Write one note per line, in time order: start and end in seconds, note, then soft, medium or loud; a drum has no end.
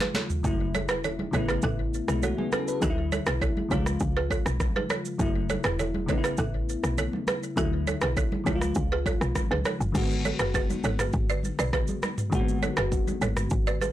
0.00 0.40 C#3 medium
0.00 0.41 F3 medium
0.00 0.42 G#3 medium
0.00 0.46 F4 medium
0.00 0.10 G#4 medium
0.00 0.09 B4 medium
0.00 snare medium
0.00 high conga medium
0.14 0.24 A4 medium
0.14 0.23 C#5 medium
0.14 snare medium
0.14 high conga medium
0.14 low conga medium
0.14 shaker medium
0.30 floor tom medium
0.30 shaker medium
0.43 0.91 F#1 loud
0.43 1.30 C#3 medium
0.43 1.33 F#3 medium
0.43 1.32 A3 medium
0.43 1.34 E4 medium
0.43 kick loud
0.43 shaker medium
0.75 0.83 A4 medium
0.75 0.83 C#5 medium
0.75 high conga medium
0.75 shaker medium
0.89 1.26 E1 medium
0.89 0.99 G#4 medium
0.89 0.98 B4 medium
0.89 cross-stick loud
0.89 shaker medium
1.04 1.13 A4 medium
1.04 1.12 C#5 medium
1.04 low conga medium
1.04 shaker medium
1.19 high conga medium
1.31 1.58 A1 loud
1.31 2.78 C#3 medium
1.31 1.91 A3 medium
1.31 1.92 B3 medium
1.31 1.43 A4 medium
1.31 1.42 C#5 medium
1.31 kick medium
1.31 high conga medium
1.31 shaker medium
1.36 1.93 E4 medium
1.49 1.58 G#4 medium
1.49 1.58 B4 medium
1.49 cross-stick medium
1.49 shaker medium
1.62 2.01 A1 loud
1.62 1.73 E4 medium
1.62 1.72 A4 medium
1.62 kick medium
1.62 shaker medium
1.94 shaker medium
2.08 2.33 B1 medium
2.08 2.22 G#3 medium
2.08 2.22 E4 medium
2.08 cross-stick medium
2.08 shaker medium
2.23 2.38 A3 medium
2.23 2.37 F#4 medium
2.23 2.32 A4 medium
2.23 2.31 C#5 medium
2.23 low conga medium
2.23 shaker medium
2.38 2.52 B3 medium
2.38 2.52 G#4 medium
2.38 high conga medium
2.52 2.67 C#4 medium
2.52 2.62 G#4 medium
2.52 2.67 A4 medium
2.52 2.61 B4 medium
2.52 cross-stick medium
2.52 high conga medium
2.52 shaker medium
2.68 2.96 B4 medium
2.68 shaker medium
2.81 3.20 D2 loud
2.81 3.71 D3 medium
2.81 3.71 F#3 medium
2.81 3.71 A3 medium
2.81 2.89 D#4 medium
2.81 2.91 F#4 medium
2.81 2.91 A4 medium
2.81 kick loud
2.81 shaker medium
2.90 3.75 E4 medium
3.12 3.21 A4 medium
3.12 3.20 C#5 medium
3.12 high conga medium
3.12 shaker medium
3.27 3.52 B1 medium
3.27 3.36 G#4 medium
3.27 3.36 B4 medium
3.27 cross-stick loud
3.27 shaker medium
3.42 3.51 A4 medium
3.42 3.50 C#5 medium
3.42 kick medium
3.42 low conga medium
3.42 shaker medium
3.57 high conga medium
3.69 3.96 C#2 loud
3.69 5.15 C#3 medium
3.69 5.16 F3 medium
3.69 5.17 G#3 medium
3.69 3.80 G#4 medium
3.69 3.80 C#5 medium
3.69 kick medium
3.69 high conga medium
3.69 shaker medium
3.74 5.18 F4 medium
3.86 cross-stick medium
3.86 shaker medium
4.00 4.39 C#2 medium
4.00 kick medium
4.00 shaker medium
4.17 4.25 G#4 medium
4.17 4.25 B4 medium
4.31 4.40 A4 medium
4.31 4.39 C#5 medium
4.31 kick medium
4.31 shaker medium
4.46 4.71 B1 medium
4.46 cross-stick medium
4.46 shaker medium
4.60 kick loud
4.60 cross-stick medium
4.60 low conga medium
4.60 shaker medium
4.76 4.85 G#4 medium
4.76 4.84 B4 medium
4.76 high conga medium
4.89 4.99 A4 medium
4.89 4.98 C#5 medium
4.89 cross-stick loud
4.89 high conga medium
4.89 shaker medium
5.05 shaker medium
5.18 5.58 F#1 loud
5.18 6.05 C#3 medium
5.18 6.09 F#3 medium
5.18 6.07 A3 medium
5.18 6.09 E4 medium
5.18 kick loud
5.18 shaker medium
5.50 5.59 A4 medium
5.50 5.58 C#5 medium
5.50 high conga medium
5.50 shaker soft
5.64 6.10 E1 medium
5.64 5.74 G#4 medium
5.64 5.73 B4 medium
5.64 cross-stick loud
5.64 shaker medium
5.79 5.88 A4 medium
5.79 5.87 C#5 medium
5.79 low conga medium
5.79 shaker medium
5.94 high conga medium
6.06 6.34 A1 loud
6.06 7.53 C#3 medium
6.06 7.54 A3 medium
6.06 7.55 B3 medium
6.06 6.18 A4 medium
6.06 6.17 C#5 medium
6.06 kick medium
6.06 high conga medium
6.06 shaker medium
6.11 6.17 D#4 medium
6.18 7.57 E4 medium
6.24 6.33 G#4 medium
6.24 6.33 B4 medium
6.24 cross-stick medium
6.24 shaker medium
6.38 6.76 A1 medium
6.38 6.48 E4 medium
6.38 6.47 A4 medium
6.38 kick medium
6.38 shaker medium
6.69 shaker medium
6.84 7.09 B1 medium
6.84 cross-stick medium
6.84 shaker medium
6.98 7.07 A4 medium
6.98 7.06 C#5 medium
6.98 low conga medium
6.98 shaker medium
7.13 high conga medium
7.27 7.37 G#4 medium
7.27 7.36 B4 medium
7.27 cross-stick loud
7.27 high conga medium
7.27 shaker medium
7.43 shaker medium
7.56 7.95 D2 loud
7.56 8.46 D3 medium
7.56 8.46 F#3 medium
7.56 8.46 A3 medium
7.56 8.47 E4 medium
7.56 7.67 F#4 medium
7.56 7.66 A4 medium
7.56 kick loud
7.56 shaker medium
7.87 7.96 A4 medium
7.87 7.95 C#5 medium
7.87 high conga medium
7.87 shaker medium
8.01 8.27 B1 medium
8.01 8.12 G#4 medium
8.01 8.11 B4 medium
8.01 cross-stick loud
8.01 shaker medium
8.17 8.26 A4 medium
8.17 8.25 C#5 medium
8.17 kick loud
8.17 low conga medium
8.17 shaker medium
8.32 high conga medium
8.44 8.71 C#2 loud
8.44 9.91 C#3 medium
8.44 9.91 F3 medium
8.44 9.92 G#3 medium
8.44 8.56 G#4 medium
8.44 8.55 C#5 medium
8.44 kick medium
8.44 high conga medium
8.44 shaker medium
8.49 8.54 E4 medium
8.55 9.96 F4 medium
8.61 cross-stick medium
8.61 shaker medium
8.75 9.14 C#2 loud
8.75 kick medium
8.75 shaker medium
8.92 9.01 G#4 medium
8.92 9.00 B4 medium
9.06 9.15 A4 medium
9.06 9.14 C#5 medium
9.06 kick medium
9.06 high conga soft
9.06 shaker medium
9.21 9.33 B1 medium
9.21 cross-stick medium
9.21 shaker medium
9.35 kick medium
9.35 cross-stick medium
9.35 low conga medium
9.35 shaker medium
9.51 9.63 C#2 medium
9.51 9.60 G#4 medium
9.51 9.60 B4 medium
9.51 high conga medium
9.65 9.75 A4 medium
9.65 9.74 C#5 medium
9.65 cross-stick loud
9.65 high conga medium
9.65 shaker medium
9.80 9.92 F#1 medium
9.80 shaker medium
9.92 10.33 G#1 loud
9.92 12.27 D3 medium
9.92 12.28 G#3 medium
9.92 10.02 A3 medium
9.92 kick loud
9.92 crash medium
9.92 shaker medium
9.97 12.30 F#4 medium
10.02 12.32 B3 medium
10.11 shaker medium
10.25 10.34 A4 medium
10.25 10.33 C#5 medium
10.25 high conga medium
10.25 shaker medium
10.39 10.77 F#1 medium
10.39 10.49 G#4 medium
10.39 10.49 B4 medium
10.39 cross-stick loud
10.39 shaker medium
10.54 10.64 G#4 medium
10.54 10.63 B4 medium
10.54 kick loud
10.54 low conga medium
10.54 shaker medium
10.70 high conga medium
10.70 shaker medium
10.84 11.09 G#1 medium
10.84 10.93 A4 medium
10.84 10.93 C#5 medium
10.84 high conga medium
10.84 shaker medium
10.99 11.09 G#4 medium
10.99 11.08 B4 medium
10.99 cross-stick medium
10.99 mid tom loud
10.99 shaker loud
11.13 11.52 G#1 medium
11.13 kick loud
11.13 shaker medium
11.29 11.38 B4 medium
11.29 11.38 D5 medium
11.29 shaker medium
11.43 high conga soft
11.43 shaker medium
11.59 11.84 B1 medium
11.59 11.68 B4 medium
11.59 11.67 D5 medium
11.59 cross-stick medium
11.59 shaker medium
11.73 11.83 G#4 medium
11.73 11.82 B4 medium
11.73 kick loud
11.73 cross-stick loud
11.73 low conga medium
11.73 shaker medium
11.87 high conga medium
11.87 shaker medium
12.02 cross-stick medium
12.02 high conga medium
12.02 shaker medium
12.18 mid tom medium
12.18 shaker medium
12.30 12.70 G#1 loud
12.30 13.92 D3 medium
12.30 13.92 G#3 medium
12.30 12.40 A#3 medium
12.30 kick loud
12.30 shaker medium
12.35 13.92 F#4 medium
12.40 13.92 B3 medium
12.49 shaker medium
12.63 12.71 A4 medium
12.63 12.71 C#5 medium
12.63 high conga medium
12.63 shaker medium
12.77 13.03 F#1 medium
12.77 12.87 G#4 medium
12.77 12.86 B4 medium
12.77 cross-stick loud
12.77 shaker medium
12.92 kick loud
12.92 low conga medium
12.92 shaker medium
13.07 high conga medium
13.07 shaker soft
13.21 13.46 G#1 medium
13.21 13.31 A4 medium
13.21 13.30 C#5 medium
13.21 high conga medium
13.21 shaker medium
13.37 cross-stick medium
13.37 mid tom medium
13.37 shaker loud
13.50 13.89 G#1 medium
13.50 kick loud
13.50 shaker medium
13.67 13.76 B4 medium
13.67 13.75 D5 medium
13.67 shaker medium
13.81 13.90 G#4 medium
13.81 13.89 B4 medium
13.81 high conga medium
13.81 shaker medium